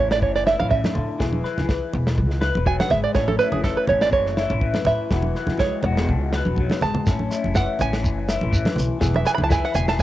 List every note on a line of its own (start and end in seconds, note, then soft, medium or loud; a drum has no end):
0.00 0.22 A1 medium
0.00 1.17 A2 medium
0.00 0.20 E3 medium
0.00 1.18 C#4 soft
0.00 0.46 E4 medium
0.00 1.44 B4 medium
0.00 0.11 C#5 medium
0.11 0.22 D5 medium
0.11 snare medium
0.20 0.53 F#1 loud
0.20 0.68 E3 medium
0.20 0.35 C#5 medium
0.20 kick medium
0.35 0.46 D5 medium
0.35 snare soft
0.46 1.19 E4 medium
0.46 0.59 E5 medium
0.46 snare medium
0.59 0.81 A1 medium
0.59 0.70 F5 loud
0.59 high conga medium
0.69 0.93 C#3 medium
0.69 1.40 E5 medium
0.69 kick medium
0.84 snare medium
0.84 high conga medium
0.93 1.19 D3 medium
0.93 low conga medium
0.97 1.07 A2 medium
1.18 1.41 E1 medium
1.18 2.65 E3 medium
1.18 1.93 G#4 medium
1.18 kick medium
1.18 snare medium
1.33 high conga medium
1.44 2.41 B4 medium
1.44 snare soft
1.58 1.79 C#2 medium
1.58 snare soft
1.58 high conga medium
1.58 low conga medium
1.66 muted clean electric guitar stroke medium
1.66 kick medium
1.66 snare medium
1.93 2.19 E1 medium
1.93 low conga medium
2.07 snare medium
2.16 2.49 C#2 loud
2.16 muted clean electric guitar stroke medium
2.16 kick medium
2.31 snare soft
2.41 3.19 B4 medium
2.41 snare medium
2.55 2.77 E1 loud
2.55 high conga medium
2.65 2.90 F#3 medium
2.65 2.79 G#5 medium
2.65 kick medium
2.80 2.91 F#5 medium
2.80 snare medium
2.80 high conga medium
2.90 3.03 G#1 medium
2.90 3.15 G#3 medium
2.90 3.03 E5 medium
2.90 snare soft
2.90 low conga medium
3.04 3.14 D5 medium
3.15 3.35 A1 medium
3.15 5.09 A2 medium
3.15 3.87 C#4 medium
3.15 3.28 C#5 medium
3.15 kick medium
3.15 snare medium
3.28 3.38 A4 medium
3.28 high conga medium
3.39 4.37 E4 medium
3.39 3.52 B4 loud
3.39 snare soft
3.52 3.74 F#1 medium
3.52 3.64 G#4 medium
3.52 high conga medium
3.52 low conga medium
3.63 4.12 E3 medium
3.63 3.77 A4 medium
3.63 kick medium
3.63 snare medium
3.77 3.88 B4 medium
3.87 4.13 A1 medium
3.87 5.08 C#4 medium
3.87 4.02 C#5 medium
3.87 low conga medium
4.01 4.12 D5 medium
4.01 snare medium
4.12 4.44 F#1 loud
4.12 4.61 E3 medium
4.12 4.59 C#5 medium
4.12 kick medium
4.27 snare soft
4.37 5.11 E4 medium
4.37 snare medium
4.50 4.71 A1 loud
4.50 high conga medium
4.61 5.11 E3 medium
4.61 kick medium
4.74 snare medium
4.74 high conga medium
4.85 4.98 A2 medium
4.85 5.36 B4 medium
4.85 5.56 E5 medium
4.85 snare soft
4.85 low conga medium
5.11 5.31 E1 medium
5.11 7.55 E3 medium
5.11 5.84 F#4 medium
5.11 kick medium
5.11 snare medium
5.22 high conga medium
5.35 6.35 B4 medium
5.35 snare soft
5.47 5.68 C#2 medium
5.47 snare soft
5.47 high conga medium
5.47 low conga medium
5.57 6.57 G#3 medium
5.57 5.83 C#5 medium
5.57 kick medium
5.57 snare medium
5.57 high conga medium
5.83 6.10 E1 loud
5.83 7.04 F#4 medium
5.83 muted five-string banjo stroke medium
5.83 low conga medium
5.97 snare medium
6.09 6.40 C#2 medium
6.09 7.04 B2 medium
6.09 kick medium
6.33 7.10 B4 medium
6.33 snare medium
6.45 6.67 E1 medium
6.45 high conga medium
6.56 6.82 F#3 medium
6.56 kick medium
6.56 high conga medium
6.70 snare medium
6.70 high conga medium
6.81 6.94 G#1 medium
6.81 7.07 G#3 medium
6.81 7.51 A5 loud
6.81 snare soft
6.81 low conga medium
6.94 low conga medium
7.07 7.27 A1 medium
7.07 8.99 A2 medium
7.07 7.80 C#4 medium
7.07 kick medium
7.07 snare medium
7.07 shekere loud
7.19 high conga medium
7.31 8.29 E4 medium
7.31 snare soft
7.31 shekere medium
7.44 7.65 F#1 medium
7.44 high conga medium
7.55 8.03 E3 medium
7.55 7.79 F#5 medium
7.55 kick medium
7.55 snare medium
7.55 shekere medium
7.79 8.05 A1 medium
7.79 9.00 C#4 medium
7.79 8.26 G#5 medium
7.79 low conga medium
7.79 shekere medium
7.93 snare medium
8.03 8.36 F#1 loud
8.03 8.51 E3 medium
8.03 kick medium
8.03 shekere medium
8.29 9.01 E4 medium
8.29 snare medium
8.29 shekere medium
8.41 8.63 A1 medium
8.41 high conga medium
8.51 9.00 E3 medium
8.51 kick medium
8.51 shekere medium
8.65 snare medium
8.65 high conga medium
8.76 8.89 B1 medium
8.76 muted clean electric guitar stroke medium
8.76 low conga medium
8.76 shekere medium
9.00 9.22 E1 loud
9.00 10.03 E3 medium
9.00 9.74 G#4 medium
9.00 kick medium
9.00 snare medium
9.00 shekere medium
9.14 9.26 E5 medium
9.14 high conga medium
9.25 10.03 B4 medium
9.25 9.34 G#5 medium
9.25 snare soft
9.25 shekere medium
9.35 9.42 B5 medium
9.35 high conga medium
9.35 low conga medium
9.40 9.60 C#2 medium
9.40 9.51 A5 medium
9.49 10.03 E4 medium
9.49 9.64 G#5 medium
9.49 kick medium
9.49 snare medium
9.49 shekere medium
9.64 9.75 F#5 medium
9.64 snare soft
9.75 10.01 E1 medium
9.75 10.03 G#4 medium
9.75 9.88 G#5 medium
9.75 low conga medium
9.75 shekere medium
9.88 9.99 A5 medium
9.88 snare medium
9.97 10.03 C#2 loud
9.97 muted clean electric guitar stroke medium
9.97 kick medium